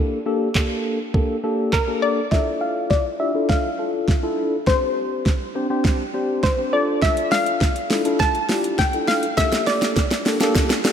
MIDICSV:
0, 0, Header, 1, 4, 480
1, 0, Start_track
1, 0, Key_signature, -1, "minor"
1, 0, Tempo, 588235
1, 1892, Time_signature, 4, 2, 24, 8
1, 8914, End_track
2, 0, Start_track
2, 0, Title_t, "Synth pluck"
2, 0, Program_c, 0, 84
2, 1412, Note_on_c, 0, 70, 88
2, 1651, Note_on_c, 0, 74, 93
2, 1659, Note_off_c, 0, 70, 0
2, 1875, Note_off_c, 0, 74, 0
2, 1889, Note_on_c, 0, 76, 102
2, 1998, Note_off_c, 0, 76, 0
2, 2130, Note_on_c, 0, 77, 106
2, 2369, Note_on_c, 0, 74, 96
2, 2378, Note_off_c, 0, 77, 0
2, 2609, Note_on_c, 0, 76, 98
2, 2618, Note_off_c, 0, 74, 0
2, 2834, Note_off_c, 0, 76, 0
2, 2850, Note_on_c, 0, 77, 90
2, 3539, Note_off_c, 0, 77, 0
2, 3811, Note_on_c, 0, 72, 111
2, 4259, Note_off_c, 0, 72, 0
2, 5250, Note_on_c, 0, 72, 86
2, 5491, Note_on_c, 0, 74, 88
2, 5498, Note_off_c, 0, 72, 0
2, 5715, Note_off_c, 0, 74, 0
2, 5730, Note_on_c, 0, 76, 101
2, 5970, Note_on_c, 0, 77, 104
2, 5978, Note_off_c, 0, 76, 0
2, 6689, Note_on_c, 0, 81, 114
2, 6713, Note_off_c, 0, 77, 0
2, 7170, Note_on_c, 0, 79, 103
2, 7185, Note_off_c, 0, 81, 0
2, 7409, Note_on_c, 0, 77, 98
2, 7418, Note_off_c, 0, 79, 0
2, 7633, Note_off_c, 0, 77, 0
2, 7649, Note_on_c, 0, 76, 101
2, 7874, Note_off_c, 0, 76, 0
2, 7889, Note_on_c, 0, 74, 93
2, 8914, Note_off_c, 0, 74, 0
2, 8914, End_track
3, 0, Start_track
3, 0, Title_t, "Tine electric piano"
3, 0, Program_c, 1, 4
3, 0, Note_on_c, 1, 58, 83
3, 0, Note_on_c, 1, 62, 82
3, 0, Note_on_c, 1, 67, 77
3, 0, Note_on_c, 1, 69, 96
3, 143, Note_off_c, 1, 58, 0
3, 144, Note_off_c, 1, 62, 0
3, 145, Note_off_c, 1, 67, 0
3, 145, Note_off_c, 1, 69, 0
3, 210, Note_on_c, 1, 58, 82
3, 211, Note_on_c, 1, 62, 80
3, 213, Note_on_c, 1, 67, 78
3, 214, Note_on_c, 1, 69, 97
3, 383, Note_off_c, 1, 58, 0
3, 384, Note_off_c, 1, 62, 0
3, 385, Note_off_c, 1, 67, 0
3, 385, Note_off_c, 1, 69, 0
3, 450, Note_on_c, 1, 58, 82
3, 452, Note_on_c, 1, 62, 73
3, 453, Note_on_c, 1, 67, 71
3, 454, Note_on_c, 1, 69, 92
3, 796, Note_off_c, 1, 58, 0
3, 796, Note_off_c, 1, 62, 0
3, 797, Note_off_c, 1, 67, 0
3, 797, Note_off_c, 1, 69, 0
3, 931, Note_on_c, 1, 58, 89
3, 932, Note_on_c, 1, 62, 81
3, 933, Note_on_c, 1, 67, 79
3, 935, Note_on_c, 1, 69, 97
3, 1104, Note_off_c, 1, 58, 0
3, 1104, Note_off_c, 1, 62, 0
3, 1105, Note_off_c, 1, 67, 0
3, 1106, Note_off_c, 1, 69, 0
3, 1170, Note_on_c, 1, 58, 85
3, 1171, Note_on_c, 1, 62, 77
3, 1173, Note_on_c, 1, 67, 73
3, 1174, Note_on_c, 1, 69, 94
3, 1429, Note_off_c, 1, 58, 0
3, 1430, Note_off_c, 1, 62, 0
3, 1431, Note_off_c, 1, 67, 0
3, 1431, Note_off_c, 1, 69, 0
3, 1530, Note_on_c, 1, 58, 84
3, 1531, Note_on_c, 1, 62, 80
3, 1532, Note_on_c, 1, 67, 79
3, 1534, Note_on_c, 1, 69, 90
3, 1789, Note_off_c, 1, 58, 0
3, 1790, Note_off_c, 1, 62, 0
3, 1791, Note_off_c, 1, 67, 0
3, 1791, Note_off_c, 1, 69, 0
3, 1890, Note_on_c, 1, 62, 72
3, 1891, Note_on_c, 1, 64, 66
3, 1892, Note_on_c, 1, 65, 62
3, 1894, Note_on_c, 1, 69, 78
3, 2408, Note_off_c, 1, 62, 0
3, 2408, Note_off_c, 1, 64, 0
3, 2409, Note_off_c, 1, 65, 0
3, 2410, Note_off_c, 1, 69, 0
3, 2610, Note_on_c, 1, 62, 72
3, 2611, Note_on_c, 1, 64, 67
3, 2612, Note_on_c, 1, 65, 66
3, 2614, Note_on_c, 1, 67, 79
3, 2697, Note_off_c, 1, 62, 0
3, 2698, Note_off_c, 1, 64, 0
3, 2698, Note_off_c, 1, 65, 0
3, 2699, Note_off_c, 1, 67, 0
3, 2730, Note_on_c, 1, 62, 70
3, 2731, Note_on_c, 1, 64, 64
3, 2732, Note_on_c, 1, 65, 66
3, 2734, Note_on_c, 1, 69, 82
3, 2989, Note_off_c, 1, 62, 0
3, 2990, Note_off_c, 1, 64, 0
3, 2991, Note_off_c, 1, 65, 0
3, 2991, Note_off_c, 1, 69, 0
3, 3090, Note_on_c, 1, 62, 71
3, 3093, Note_on_c, 1, 65, 66
3, 3094, Note_on_c, 1, 69, 80
3, 3349, Note_off_c, 1, 62, 0
3, 3351, Note_off_c, 1, 65, 0
3, 3351, Note_off_c, 1, 69, 0
3, 3450, Note_on_c, 1, 62, 90
3, 3452, Note_on_c, 1, 64, 79
3, 3453, Note_on_c, 1, 65, 81
3, 3454, Note_on_c, 1, 69, 99
3, 3709, Note_off_c, 1, 62, 0
3, 3710, Note_off_c, 1, 64, 0
3, 3711, Note_off_c, 1, 65, 0
3, 3711, Note_off_c, 1, 69, 0
3, 3810, Note_on_c, 1, 60, 73
3, 3811, Note_on_c, 1, 62, 69
3, 3813, Note_on_c, 1, 67, 67
3, 3813, Note_on_c, 1, 72, 80
3, 4328, Note_off_c, 1, 60, 0
3, 4328, Note_off_c, 1, 62, 0
3, 4329, Note_off_c, 1, 67, 0
3, 4329, Note_off_c, 1, 72, 0
3, 4530, Note_on_c, 1, 60, 87
3, 4531, Note_on_c, 1, 62, 82
3, 4532, Note_on_c, 1, 67, 82
3, 4534, Note_on_c, 1, 72, 95
3, 4617, Note_off_c, 1, 60, 0
3, 4618, Note_off_c, 1, 62, 0
3, 4618, Note_off_c, 1, 67, 0
3, 4619, Note_off_c, 1, 72, 0
3, 4650, Note_on_c, 1, 60, 87
3, 4652, Note_on_c, 1, 62, 79
3, 4653, Note_on_c, 1, 67, 79
3, 4654, Note_on_c, 1, 72, 95
3, 4909, Note_off_c, 1, 60, 0
3, 4910, Note_off_c, 1, 62, 0
3, 4911, Note_off_c, 1, 67, 0
3, 4911, Note_off_c, 1, 72, 0
3, 5009, Note_on_c, 1, 60, 87
3, 5011, Note_on_c, 1, 62, 81
3, 5012, Note_on_c, 1, 67, 77
3, 5013, Note_on_c, 1, 72, 94
3, 5269, Note_off_c, 1, 60, 0
3, 5270, Note_off_c, 1, 62, 0
3, 5270, Note_off_c, 1, 67, 0
3, 5271, Note_off_c, 1, 72, 0
3, 5369, Note_on_c, 1, 60, 77
3, 5371, Note_on_c, 1, 62, 71
3, 5372, Note_on_c, 1, 67, 73
3, 5374, Note_on_c, 1, 72, 86
3, 5479, Note_off_c, 1, 62, 0
3, 5489, Note_on_c, 1, 62, 78
3, 5491, Note_off_c, 1, 60, 0
3, 5492, Note_off_c, 1, 67, 0
3, 5492, Note_on_c, 1, 65, 77
3, 5493, Note_off_c, 1, 72, 0
3, 5493, Note_on_c, 1, 69, 87
3, 6259, Note_off_c, 1, 62, 0
3, 6260, Note_off_c, 1, 65, 0
3, 6261, Note_off_c, 1, 69, 0
3, 6450, Note_on_c, 1, 62, 74
3, 6451, Note_on_c, 1, 64, 71
3, 6452, Note_on_c, 1, 65, 72
3, 6453, Note_on_c, 1, 69, 84
3, 6537, Note_off_c, 1, 62, 0
3, 6538, Note_off_c, 1, 64, 0
3, 6538, Note_off_c, 1, 65, 0
3, 6539, Note_off_c, 1, 69, 0
3, 6570, Note_on_c, 1, 62, 77
3, 6571, Note_on_c, 1, 64, 68
3, 6572, Note_on_c, 1, 65, 69
3, 6574, Note_on_c, 1, 69, 83
3, 6829, Note_off_c, 1, 62, 0
3, 6830, Note_off_c, 1, 64, 0
3, 6830, Note_off_c, 1, 65, 0
3, 6831, Note_off_c, 1, 69, 0
3, 6930, Note_on_c, 1, 62, 77
3, 6931, Note_on_c, 1, 64, 72
3, 6933, Note_on_c, 1, 65, 69
3, 6934, Note_on_c, 1, 67, 81
3, 7190, Note_off_c, 1, 62, 0
3, 7190, Note_off_c, 1, 64, 0
3, 7191, Note_off_c, 1, 65, 0
3, 7191, Note_off_c, 1, 67, 0
3, 7289, Note_on_c, 1, 62, 78
3, 7291, Note_on_c, 1, 64, 70
3, 7292, Note_on_c, 1, 65, 72
3, 7294, Note_on_c, 1, 69, 89
3, 7549, Note_off_c, 1, 62, 0
3, 7550, Note_off_c, 1, 64, 0
3, 7551, Note_off_c, 1, 65, 0
3, 7551, Note_off_c, 1, 69, 0
3, 7650, Note_on_c, 1, 58, 82
3, 7651, Note_on_c, 1, 62, 74
3, 7652, Note_on_c, 1, 67, 73
3, 7654, Note_on_c, 1, 69, 83
3, 8168, Note_off_c, 1, 58, 0
3, 8168, Note_off_c, 1, 62, 0
3, 8169, Note_off_c, 1, 67, 0
3, 8169, Note_off_c, 1, 69, 0
3, 8370, Note_on_c, 1, 58, 79
3, 8371, Note_on_c, 1, 62, 72
3, 8372, Note_on_c, 1, 67, 71
3, 8374, Note_on_c, 1, 69, 88
3, 8457, Note_off_c, 1, 58, 0
3, 8458, Note_off_c, 1, 62, 0
3, 8458, Note_off_c, 1, 67, 0
3, 8459, Note_off_c, 1, 69, 0
3, 8490, Note_on_c, 1, 58, 87
3, 8491, Note_on_c, 1, 62, 85
3, 8492, Note_on_c, 1, 67, 86
3, 8494, Note_on_c, 1, 69, 103
3, 8749, Note_off_c, 1, 58, 0
3, 8750, Note_off_c, 1, 62, 0
3, 8751, Note_off_c, 1, 67, 0
3, 8751, Note_off_c, 1, 69, 0
3, 8850, Note_on_c, 1, 58, 92
3, 8851, Note_on_c, 1, 62, 86
3, 8853, Note_on_c, 1, 67, 83
3, 8854, Note_on_c, 1, 69, 100
3, 8914, Note_off_c, 1, 58, 0
3, 8914, Note_off_c, 1, 62, 0
3, 8914, Note_off_c, 1, 67, 0
3, 8914, Note_off_c, 1, 69, 0
3, 8914, End_track
4, 0, Start_track
4, 0, Title_t, "Drums"
4, 451, Note_on_c, 9, 39, 100
4, 452, Note_on_c, 9, 36, 96
4, 533, Note_off_c, 9, 39, 0
4, 534, Note_off_c, 9, 36, 0
4, 933, Note_on_c, 9, 36, 112
4, 1014, Note_off_c, 9, 36, 0
4, 1412, Note_on_c, 9, 36, 115
4, 1412, Note_on_c, 9, 39, 95
4, 1493, Note_off_c, 9, 36, 0
4, 1494, Note_off_c, 9, 39, 0
4, 1892, Note_on_c, 9, 36, 102
4, 1892, Note_on_c, 9, 38, 51
4, 1974, Note_off_c, 9, 36, 0
4, 1974, Note_off_c, 9, 38, 0
4, 2372, Note_on_c, 9, 36, 101
4, 2372, Note_on_c, 9, 38, 50
4, 2453, Note_off_c, 9, 36, 0
4, 2453, Note_off_c, 9, 38, 0
4, 2851, Note_on_c, 9, 38, 63
4, 2852, Note_on_c, 9, 36, 114
4, 2933, Note_off_c, 9, 38, 0
4, 2934, Note_off_c, 9, 36, 0
4, 3331, Note_on_c, 9, 36, 117
4, 3332, Note_on_c, 9, 38, 63
4, 3413, Note_off_c, 9, 36, 0
4, 3413, Note_off_c, 9, 38, 0
4, 3811, Note_on_c, 9, 38, 68
4, 3812, Note_on_c, 9, 36, 108
4, 3893, Note_off_c, 9, 36, 0
4, 3893, Note_off_c, 9, 38, 0
4, 4291, Note_on_c, 9, 36, 102
4, 4292, Note_on_c, 9, 38, 66
4, 4373, Note_off_c, 9, 36, 0
4, 4373, Note_off_c, 9, 38, 0
4, 4771, Note_on_c, 9, 36, 120
4, 4771, Note_on_c, 9, 38, 76
4, 4853, Note_off_c, 9, 36, 0
4, 4853, Note_off_c, 9, 38, 0
4, 5251, Note_on_c, 9, 36, 116
4, 5251, Note_on_c, 9, 38, 81
4, 5332, Note_off_c, 9, 36, 0
4, 5333, Note_off_c, 9, 38, 0
4, 5730, Note_on_c, 9, 38, 84
4, 5731, Note_on_c, 9, 36, 112
4, 5812, Note_off_c, 9, 38, 0
4, 5813, Note_off_c, 9, 36, 0
4, 5851, Note_on_c, 9, 42, 66
4, 5932, Note_off_c, 9, 42, 0
4, 5971, Note_on_c, 9, 38, 83
4, 5971, Note_on_c, 9, 46, 72
4, 6053, Note_off_c, 9, 38, 0
4, 6053, Note_off_c, 9, 46, 0
4, 6090, Note_on_c, 9, 42, 65
4, 6172, Note_off_c, 9, 42, 0
4, 6210, Note_on_c, 9, 38, 87
4, 6211, Note_on_c, 9, 36, 105
4, 6292, Note_off_c, 9, 36, 0
4, 6292, Note_off_c, 9, 38, 0
4, 6331, Note_on_c, 9, 42, 57
4, 6412, Note_off_c, 9, 42, 0
4, 6450, Note_on_c, 9, 38, 95
4, 6451, Note_on_c, 9, 46, 70
4, 6532, Note_off_c, 9, 38, 0
4, 6532, Note_off_c, 9, 46, 0
4, 6569, Note_on_c, 9, 42, 73
4, 6651, Note_off_c, 9, 42, 0
4, 6691, Note_on_c, 9, 36, 123
4, 6691, Note_on_c, 9, 38, 90
4, 6772, Note_off_c, 9, 38, 0
4, 6773, Note_off_c, 9, 36, 0
4, 6812, Note_on_c, 9, 42, 55
4, 6893, Note_off_c, 9, 42, 0
4, 6930, Note_on_c, 9, 38, 97
4, 6931, Note_on_c, 9, 46, 80
4, 7012, Note_off_c, 9, 38, 0
4, 7012, Note_off_c, 9, 46, 0
4, 7052, Note_on_c, 9, 42, 75
4, 7133, Note_off_c, 9, 42, 0
4, 7170, Note_on_c, 9, 38, 99
4, 7171, Note_on_c, 9, 36, 123
4, 7252, Note_off_c, 9, 36, 0
4, 7252, Note_off_c, 9, 38, 0
4, 7289, Note_on_c, 9, 42, 48
4, 7371, Note_off_c, 9, 42, 0
4, 7410, Note_on_c, 9, 38, 97
4, 7410, Note_on_c, 9, 46, 82
4, 7492, Note_off_c, 9, 38, 0
4, 7492, Note_off_c, 9, 46, 0
4, 7530, Note_on_c, 9, 42, 83
4, 7612, Note_off_c, 9, 42, 0
4, 7652, Note_on_c, 9, 36, 110
4, 7652, Note_on_c, 9, 38, 98
4, 7652, Note_on_c, 9, 82, 73
4, 7733, Note_off_c, 9, 36, 0
4, 7733, Note_off_c, 9, 38, 0
4, 7734, Note_off_c, 9, 82, 0
4, 7771, Note_on_c, 9, 42, 67
4, 7771, Note_on_c, 9, 82, 66
4, 7772, Note_on_c, 9, 38, 104
4, 7853, Note_off_c, 9, 38, 0
4, 7853, Note_off_c, 9, 42, 0
4, 7853, Note_off_c, 9, 82, 0
4, 7892, Note_on_c, 9, 38, 107
4, 7892, Note_on_c, 9, 46, 72
4, 7892, Note_on_c, 9, 82, 53
4, 7973, Note_off_c, 9, 38, 0
4, 7974, Note_off_c, 9, 46, 0
4, 7974, Note_off_c, 9, 82, 0
4, 8012, Note_on_c, 9, 38, 103
4, 8012, Note_on_c, 9, 42, 69
4, 8012, Note_on_c, 9, 82, 69
4, 8094, Note_off_c, 9, 38, 0
4, 8094, Note_off_c, 9, 42, 0
4, 8094, Note_off_c, 9, 82, 0
4, 8131, Note_on_c, 9, 38, 98
4, 8131, Note_on_c, 9, 82, 65
4, 8132, Note_on_c, 9, 36, 107
4, 8213, Note_off_c, 9, 36, 0
4, 8213, Note_off_c, 9, 38, 0
4, 8213, Note_off_c, 9, 82, 0
4, 8252, Note_on_c, 9, 38, 98
4, 8252, Note_on_c, 9, 42, 56
4, 8252, Note_on_c, 9, 82, 58
4, 8333, Note_off_c, 9, 38, 0
4, 8333, Note_off_c, 9, 42, 0
4, 8333, Note_off_c, 9, 82, 0
4, 8371, Note_on_c, 9, 38, 110
4, 8372, Note_on_c, 9, 46, 70
4, 8372, Note_on_c, 9, 82, 49
4, 8453, Note_off_c, 9, 38, 0
4, 8453, Note_off_c, 9, 46, 0
4, 8453, Note_off_c, 9, 82, 0
4, 8490, Note_on_c, 9, 42, 75
4, 8490, Note_on_c, 9, 82, 79
4, 8491, Note_on_c, 9, 38, 108
4, 8571, Note_off_c, 9, 42, 0
4, 8571, Note_off_c, 9, 82, 0
4, 8573, Note_off_c, 9, 38, 0
4, 8611, Note_on_c, 9, 38, 116
4, 8612, Note_on_c, 9, 36, 120
4, 8612, Note_on_c, 9, 82, 86
4, 8693, Note_off_c, 9, 38, 0
4, 8693, Note_off_c, 9, 82, 0
4, 8694, Note_off_c, 9, 36, 0
4, 8731, Note_on_c, 9, 38, 111
4, 8732, Note_on_c, 9, 42, 57
4, 8732, Note_on_c, 9, 82, 55
4, 8813, Note_off_c, 9, 38, 0
4, 8814, Note_off_c, 9, 42, 0
4, 8814, Note_off_c, 9, 82, 0
4, 8852, Note_on_c, 9, 38, 113
4, 8852, Note_on_c, 9, 46, 83
4, 8852, Note_on_c, 9, 82, 63
4, 8914, Note_off_c, 9, 38, 0
4, 8914, Note_off_c, 9, 46, 0
4, 8914, Note_off_c, 9, 82, 0
4, 8914, End_track
0, 0, End_of_file